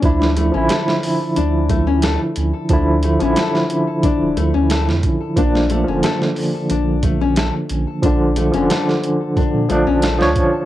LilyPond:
<<
  \new Staff \with { instrumentName = "Nylon-string guitar" } { \time 4/4 \key d \minor \tempo 4 = 90 d'8 a16 cis'16 a'16 r8. d'8 a16 cis'16 a'16 r8. | d'8 a16 cis'16 a'16 r8. d'8 a16 cis'16 a'16 r8. | d'8 a16 cis'16 a'16 r8. d'8 a16 cis'16 a'16 r8. | d'8 a16 cis'16 a'16 r8. d'8 a16 cis'16 a'16 r8. | }
  \new Staff \with { instrumentName = "Tine electric piano" } { \clef bass \time 4/4 \key d \minor <f d' e'>8. <d f e'>2.~ <d f e'>16 | <d f e'>8. <d f e'>2.~ <d f e'>16 | <f bes d'>8. <d f>2.~ <d f>16 | <d f>8. <d f>4.~ <d f>16 <f d'>8. <f cis''>8. | }
  \new Staff \with { instrumentName = "Sub bass" } { \clef bass \time 4/4 \key d \minor d,8. a,,16 r4 d,4~ d,16 r16 d,16 r16 | d,8. a,,16 r4 r16 d,,16 d,16 d,8 f,16 r8 | bes,,8. f,,16 r4 bes,,4~ bes,,16 r16 bes,,16 r16 | bes,,8. f,,16 r4 r16 bes,16 bes,,16 bes,,8 d,16 r8 | }
  \new DrumStaff \with { instrumentName = "Drums" } \drummode { \time 4/4 <hh bd>16 sn16 hh8 <hh sn>16 sn16 hho8 hh8 <hh bd>8 <hh sn>8 hh8 | <hh bd>8 hh16 hh16 <hh sn>16 sn16 hh8 <hh bd>8 hh8 <hh sn>16 sn16 <hh bd>8 | <hh bd>16 sn16 hh8 <hh sn>16 sn16 hho8 hh8 <hh bd>8 <hh sn>8 hh8 | <hh bd>8 hh16 hh16 <hh sn>16 sn16 hh8 <hh bd>8 hh8 <hh sn>16 sn16 <hh bd>8 | }
>>